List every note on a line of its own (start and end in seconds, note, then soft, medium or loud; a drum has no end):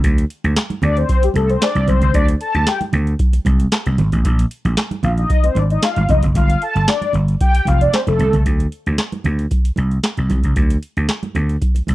0.04 0.24 D2 loud
0.04 kick medium
0.04 closed hi-hat medium
0.04 muted conga soft
0.18 closed hi-hat medium
0.30 closed hi-hat medium
0.44 0.54 D2 loud
0.44 closed hi-hat soft
0.44 high conga medium
0.56 snare loud
0.56 clap medium
0.56 closed hi-hat medium
0.56 muted conga soft
0.70 closed hi-hat soft
0.70 muted conga soft
0.70 high conga medium
0.82 1.03 D2 medium
0.82 0.97 D5 medium
0.82 closed hi-hat medium
0.82 low conga medium
0.97 1.24 C5 medium
0.97 closed hi-hat medium
1.09 kick loud
1.09 closed hi-hat medium
1.09 muted conga soft
1.22 1.29 G4 medium
1.22 closed hi-hat medium
1.22 muted conga soft
1.34 1.55 C2 medium
1.34 1.50 A4 medium
1.34 closed hi-hat medium
1.34 high conga medium
1.50 1.62 C5 medium
1.50 closed hi-hat soft
1.61 1.86 D5 medium
1.61 snare loud
1.61 clap medium
1.61 closed hi-hat medium
1.61 muted conga soft
1.75 1.85 C2 medium
1.75 closed hi-hat medium
1.75 muted conga soft
1.75 high conga medium
1.87 1.99 C2 medium
1.87 2.15 C5 medium
1.87 kick loud
1.87 closed hi-hat medium
1.87 high conga medium
1.87 low conga medium
2.01 2.11 C#2 medium
2.01 kick medium
2.01 closed hi-hat soft
2.01 low conga medium
2.14 2.34 D2 loud
2.14 2.26 D5 loud
2.14 kick loud
2.14 closed hi-hat medium
2.14 muted conga soft
2.28 closed hi-hat medium
2.28 muted conga soft
2.41 2.68 A5 loud
2.41 closed hi-hat medium
2.54 2.64 D2 medium
2.54 closed hi-hat soft
2.54 high conga medium
2.67 2.79 G5 medium
2.67 snare loud
2.67 clap medium
2.67 closed hi-hat medium
2.67 muted conga soft
2.81 closed hi-hat medium
2.81 muted conga soft
2.81 high conga medium
2.93 3.13 D2 medium
2.93 closed hi-hat medium
2.93 low conga medium
3.07 closed hi-hat medium
3.19 kick loud
3.19 closed hi-hat medium
3.19 muted conga soft
3.33 closed hi-hat medium
3.33 muted conga soft
3.45 3.66 C2 loud
3.45 kick medium
3.45 closed hi-hat medium
3.45 high conga medium
3.60 closed hi-hat soft
3.72 snare loud
3.72 clap loud
3.72 closed hi-hat medium
3.86 3.96 C2 medium
3.86 closed hi-hat medium
3.86 high conga medium
3.98 4.09 G#1 medium
3.98 closed hi-hat medium
3.98 high conga medium
3.98 low conga medium
4.12 4.22 A1 medium
4.12 kick medium
4.12 closed hi-hat medium
4.12 low conga medium
4.25 4.45 A#1 loud
4.25 kick medium
4.25 closed hi-hat medium
4.39 closed hi-hat medium
4.51 closed hi-hat medium
4.65 4.74 A#1 loud
4.65 closed hi-hat soft
4.65 high conga medium
4.77 snare loud
4.77 clap medium
4.77 closed hi-hat medium
4.77 muted conga soft
4.91 closed hi-hat soft
4.91 muted conga soft
4.91 high conga medium
5.03 5.24 A#1 medium
5.03 5.10 F5 medium
5.03 closed hi-hat medium
5.03 low conga medium
5.18 5.45 D#5 medium
5.18 closed hi-hat medium
5.29 kick loud
5.29 closed hi-hat medium
5.29 muted conga soft
5.43 5.57 C5 medium
5.43 closed hi-hat medium
5.43 muted conga soft
5.55 5.76 G#1 medium
5.55 5.63 D5 medium
5.55 closed hi-hat medium
5.55 high conga medium
5.70 5.83 D#5 medium
5.70 closed hi-hat soft
5.82 6.10 F5 medium
5.82 snare loud
5.82 clap medium
5.82 closed hi-hat medium
5.82 muted conga soft
5.96 6.06 G#1 medium
5.96 closed hi-hat medium
5.96 muted conga soft
5.96 high conga medium
6.09 6.20 F1 medium
6.09 6.21 D#5 medium
6.09 kick loud
6.09 closed hi-hat medium
6.09 high conga medium
6.09 low conga medium
6.23 6.32 F#1 medium
6.23 kick medium
6.23 closed hi-hat medium
6.23 low conga medium
6.35 6.55 G1 loud
6.35 6.63 F5 loud
6.35 kick loud
6.35 closed hi-hat medium
6.35 muted conga soft
6.48 closed hi-hat medium
6.48 muted conga soft
6.62 6.86 A5 loud
6.62 closed hi-hat medium
6.75 6.85 G1 loud
6.75 closed hi-hat soft
6.75 high conga medium
6.88 7.13 D5 medium
6.88 snare loud
6.88 clap medium
6.88 closed hi-hat medium
6.88 muted conga soft
7.02 closed hi-hat medium
7.02 high conga medium
7.13 7.34 G1 medium
7.13 closed hi-hat medium
7.13 low conga medium
7.28 closed hi-hat medium
7.41 7.68 G5 loud
7.41 kick loud
7.41 closed hi-hat medium
7.55 closed hi-hat medium
7.65 7.87 F1 medium
7.65 7.81 F5 loud
7.65 kick medium
7.65 closed hi-hat medium
7.65 high conga medium
7.81 7.94 D5 medium
7.81 closed hi-hat soft
7.93 8.00 C5 medium
7.93 snare loud
7.93 clap medium
7.93 closed hi-hat medium
7.93 muted conga soft
8.07 8.17 F1 medium
8.07 8.43 A4 medium
8.07 closed hi-hat medium
8.07 muted conga soft
8.07 high conga medium
8.19 8.30 C2 loud
8.19 closed hi-hat medium
8.19 high conga medium
8.19 low conga medium
8.33 8.43 C#2 medium
8.33 kick medium
8.33 closed hi-hat medium
8.33 low conga medium
8.46 8.66 D2 loud
8.46 kick medium
8.46 closed hi-hat medium
8.59 closed hi-hat medium
8.59 muted conga soft
8.72 closed hi-hat medium
8.86 8.96 D2 loud
8.86 closed hi-hat soft
8.98 snare loud
8.98 clap medium
8.98 closed hi-hat medium
8.98 muted conga soft
9.12 closed hi-hat soft
9.12 muted conga soft
9.12 high conga medium
9.24 9.45 D2 medium
9.24 closed hi-hat medium
9.24 low conga medium
9.39 closed hi-hat soft
9.51 kick loud
9.51 closed hi-hat medium
9.51 muted conga soft
9.65 closed hi-hat medium
9.76 9.98 C2 medium
9.76 closed hi-hat medium
9.76 high conga medium
9.91 closed hi-hat soft
10.03 snare loud
10.03 clap medium
10.03 closed hi-hat medium
10.03 muted conga soft
10.17 10.27 C2 medium
10.17 closed hi-hat soft
10.17 muted conga soft
10.17 high conga medium
10.30 10.41 C2 medium
10.30 kick loud
10.30 closed hi-hat medium
10.30 high conga medium
10.30 low conga medium
10.44 10.53 C#2 medium
10.44 kick medium
10.44 closed hi-hat soft
10.56 10.76 D2 loud
10.56 kick loud
10.56 closed hi-hat medium
10.70 closed hi-hat medium
10.83 closed hi-hat medium
10.97 11.06 D2 medium
10.97 closed hi-hat soft
11.09 snare loud
11.09 clap medium
11.09 closed hi-hat medium
11.09 muted conga soft
11.23 closed hi-hat soft
11.23 muted conga soft
11.23 high conga medium
11.35 11.55 D2 medium
11.35 closed hi-hat medium
11.35 low conga medium
11.49 closed hi-hat soft
11.61 kick loud
11.61 closed hi-hat medium
11.61 muted conga soft
11.75 closed hi-hat medium
11.75 muted conga soft
11.87 11.95 C2 medium
11.87 kick medium
11.87 closed hi-hat medium
11.87 high conga medium